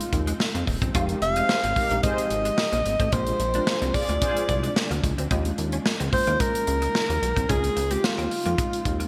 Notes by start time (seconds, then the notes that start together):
Already playing: C#3 F3 G#3 C4 D#4 F4
0.01 closed hi-hat
0.13 D#2, muted clean electric guitar stroke, kick, closed hi-hat
0.27 G#3, closed hi-hat
0.40 snare
0.55 F2 A#3, closed hi-hat
0.67 D#1, muted clean electric guitar stroke, kick, open hi-hat
0.82 E1 C4, kick, closed hi-hat
0.94 F1 C3 G#3 C4 D#4 F4 G4, kick, closed hi-hat
1.09 D#4 G4 A#4, closed hi-hat
1.22 F1 F5, muted clean electric guitar stroke, closed hi-hat
1.36 C4 D#4 G#4 C5, closed hi-hat
1.49 C4 G#4 C5, snare
1.64 G#1 C4, closed hi-hat
1.76 G#3 C4 D#4 G4 A#4, muted clean electric guitar stroke, kick, open hi-hat
1.90 A#1 G#3 A#3 C4 D#4 G4, closed hi-hat
2.03 G#3 C4 G#4 C5 D#5, kick, closed hi-hat
2.18 closed hi-hat
2.30 G#1, muted clean electric guitar stroke, closed hi-hat
2.45 G#3, closed hi-hat
2.58 snare
2.72 A#1 A#3, closed hi-hat
2.85 G#1, muted clean electric guitar stroke, closed hi-hat
3.00 A1 C4, kick, closed hi-hat
3.12 A#1 G#3 A#3 C4 D4 F4 C5, kick, closed hi-hat
3.27 F4 G#4 C5, closed hi-hat
3.40 A#1, muted clean electric guitar stroke, closed hi-hat
3.54 G#3 C4 D4 F4 A#4, closed hi-hat
3.67 F4 G#4 C5, snare
3.82 C2 C4, closed hi-hat
3.94 F4 G#4 D5, muted clean electric guitar stroke, kick, open hi-hat
4.08 D2 G#3 A#3 C4 D4 F4, closed hi-hat
4.22 G#3 F4 G#4 C5, kick, closed hi-hat
4.37 closed hi-hat
4.49 C2, muted clean electric guitar stroke, kick, closed hi-hat
4.63 G#3, closed hi-hat
4.76 snare
4.91 D2 A#3, closed hi-hat
5.04 C#2, muted clean electric guitar stroke, kick, closed hi-hat
5.18 D2 C4, closed hi-hat
5.30 D#2 C#3 D#3 G#3 A#3 C#4 D#4 F4, kick, closed hi-hat
5.45 closed hi-hat
5.58 D#2, muted clean electric guitar stroke, closed hi-hat
5.72 C#4, closed hi-hat
5.86 snare
6.00 C#2 C4, closed hi-hat
6.12 G#3 A#3 C#4 F4 C5, muted clean electric guitar stroke, kick, open hi-hat
6.27 D#2 G#3 A#3 C#4 E4, closed hi-hat
6.35 F4
6.40 G#3 A#4, kick, closed hi-hat
6.55 closed hi-hat
6.67 C#2, muted clean electric guitar stroke, closed hi-hat
6.82 G#3, closed hi-hat
6.95 snare
7.09 D#2 A#3, closed hi-hat
7.22 B1, muted clean electric guitar stroke, closed hi-hat
7.36 C2 C4, kick, closed hi-hat
7.49 C#2 F3 G#3 C4 C#4 D#4 F4 G#4, kick, closed hi-hat
7.64 closed hi-hat
7.76 C#2, muted clean electric guitar stroke, closed hi-hat
7.91 G#3 C4 D#4 F4 G4, closed hi-hat
8.04 F4, snare
8.18 D#2 C4, closed hi-hat
8.31 muted clean electric guitar stroke, open hi-hat
8.45 F2 G#3 A#3 C4 D#4 F4, closed hi-hat
8.58 G#3, kick, closed hi-hat
8.73 closed hi-hat
8.85 D#2, muted clean electric guitar stroke, kick, closed hi-hat
9.00 A#3, closed hi-hat